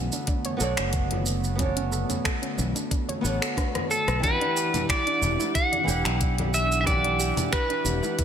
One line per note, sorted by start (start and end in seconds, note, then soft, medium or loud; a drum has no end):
0.00 4.19 D3 medium
0.00 4.19 A3 medium
0.00 0.55 B3 medium
0.00 4.19 B3 medium
0.00 0.11 C#4 medium
0.00 0.56 F#4 medium
0.00 0.57 A4 medium
0.00 0.58 C#5 medium
0.00 0.59 D5 medium
0.12 0.26 D4 medium
0.12 shaker soft
0.27 0.37 D4 medium
0.27 kick medium
0.27 closed hi-hat medium
0.27 shaker soft
0.45 0.59 C#5 medium
0.45 closed hi-hat soft
0.45 high conga medium
0.57 0.74 B1 loud
0.57 1.54 B3 medium
0.57 1.55 F#4 medium
0.57 1.56 A4 medium
0.57 shaker medium
0.61 0.77 A4 medium
0.61 1.57 C#5 medium
0.61 1.57 D5 medium
0.77 2.03 F#1 medium
0.77 0.92 C#4 medium
0.77 finger snap medium
0.77 closed hi-hat soft
0.77 shaker soft
0.93 kick medium
0.93 closed hi-hat medium
0.93 shaker soft
1.11 closed hi-hat soft
1.11 high conga medium
1.26 shaker medium
1.44 shaker soft
1.55 3.19 B3 medium
1.55 3.20 F#4 medium
1.55 3.20 A4 medium
1.55 kick medium
1.55 closed hi-hat medium
1.60 1.75 C#4 medium
1.60 3.21 C#5 medium
1.60 3.22 D5 medium
1.60 high conga medium
1.60 shaker soft
1.77 1.91 C#4 loud
1.77 closed hi-hat soft
1.92 2.08 A4 medium
1.92 shaker medium
2.09 2.24 C#4 medium
2.09 closed hi-hat soft
2.09 high conga medium
2.09 low conga medium
2.09 shaker soft
2.24 2.41 A4 medium
2.24 finger snap medium
2.24 kick loud
2.24 closed hi-hat medium
2.24 shaker soft
2.42 2.57 C#4 medium
2.42 closed hi-hat soft
2.58 2.72 B1 medium
2.58 2.74 C#4 medium
2.58 high conga medium
2.58 shaker medium
2.75 2.90 D4 medium
2.75 closed hi-hat soft
2.75 shaker soft
2.91 3.01 D4 medium
2.91 kick loud
2.91 closed hi-hat medium
2.91 shaker soft
3.09 3.23 C#5 medium
3.09 closed hi-hat soft
3.09 high conga medium
3.21 3.38 A1 medium
3.21 4.18 B3 medium
3.21 3.40 D4 medium
3.21 4.19 F#4 medium
3.21 4.19 A4 medium
3.21 shaker medium
3.26 4.20 C#5 medium
3.26 4.21 D5 medium
3.42 3.50 A4 loud
3.42 finger snap medium
3.42 closed hi-hat soft
3.42 shaker soft
3.57 3.74 D4 medium
3.57 kick medium
3.57 cross-stick medium
3.57 closed hi-hat medium
3.57 shaker soft
3.75 cross-stick medium
3.75 closed hi-hat soft
3.75 high conga medium
3.90 4.06 A4 medium
3.90 4.23 A4 medium
3.90 shaker medium
4.08 4.20 B1 medium
4.08 cross-stick medium
4.08 closed hi-hat soft
4.08 shaker soft
4.19 5.82 E3 medium
4.19 8.24 E3 medium
4.19 8.24 D4 medium
4.19 5.83 E4 medium
4.19 5.84 G4 medium
4.19 8.24 G4 medium
4.19 8.24 F#5 medium
4.19 kick loud
4.19 high conga medium
4.24 4.39 D4 medium
4.24 4.85 B4 loud
4.24 5.85 D5 medium
4.24 5.86 F#5 medium
4.24 closed hi-hat medium
4.24 shaker soft
4.41 4.55 D4 loud
4.41 closed hi-hat soft
4.57 4.72 G4 medium
4.57 shaker medium
4.74 4.88 D4 medium
4.74 closed hi-hat soft
4.74 high bongo soft
4.74 high conga medium
4.74 low conga medium
4.74 shaker soft
4.89 5.05 G4 medium
4.89 5.55 D5 loud
4.89 finger snap medium
4.89 kick medium
4.89 closed hi-hat medium
4.89 shaker soft
5.07 5.21 D4 medium
5.07 closed hi-hat soft
5.21 5.36 E1 medium
5.21 5.38 D4 medium
5.21 high conga medium
5.21 shaker medium
5.40 5.54 E4 medium
5.40 high bongo medium
5.40 shaker soft
5.55 5.64 E4 medium
5.55 6.54 F#5 loud
5.55 kick loud
5.55 closed hi-hat medium
5.55 shaker soft
5.72 5.86 D5 medium
5.72 closed hi-hat soft
5.72 high conga medium
5.84 6.81 E3 medium
5.84 6.82 E4 medium
5.84 6.83 G4 medium
5.88 6.01 E1 loud
5.88 6.04 G4 medium
5.88 6.84 D5 medium
5.88 6.85 F#5 medium
5.88 shaker medium
6.05 7.31 B1 medium
6.05 6.19 D4 medium
6.05 finger snap medium
6.05 closed hi-hat soft
6.05 shaker soft
6.21 kick medium
6.21 closed hi-hat medium
6.21 shaker soft
6.38 closed hi-hat soft
6.38 high conga loud
6.54 6.80 E5 medium
6.54 shaker medium
6.72 shaker soft
6.81 8.24 E3 medium
6.81 8.24 E4 medium
6.81 6.86 E5 medium
6.86 7.02 D4 loud
6.86 8.24 G4 medium
6.86 7.55 D5 loud
6.86 8.24 D5 medium
6.86 8.24 F#5 medium
6.86 kick loud
6.86 closed hi-hat medium
6.86 high conga medium
6.86 shaker soft
7.04 7.18 D4 loud
7.04 closed hi-hat soft
7.20 7.36 G4 medium
7.20 shaker medium
7.37 7.51 D4 medium
7.37 closed hi-hat soft
7.37 high bongo soft
7.37 high conga medium
7.37 low conga medium
7.37 shaker soft
7.52 7.68 G4 medium
7.52 8.24 B4 loud
7.52 finger snap medium
7.52 kick loud
7.52 closed hi-hat medium
7.52 shaker soft
7.70 7.84 D4 medium
7.70 closed hi-hat soft
7.84 7.99 E1 medium
7.84 8.01 D4 medium
7.84 high conga medium
7.84 shaker medium
8.03 8.17 E4 medium
8.03 high bongo medium
8.03 shaker soft
8.18 8.24 E4 medium
8.18 kick loud
8.18 closed hi-hat medium
8.18 shaker soft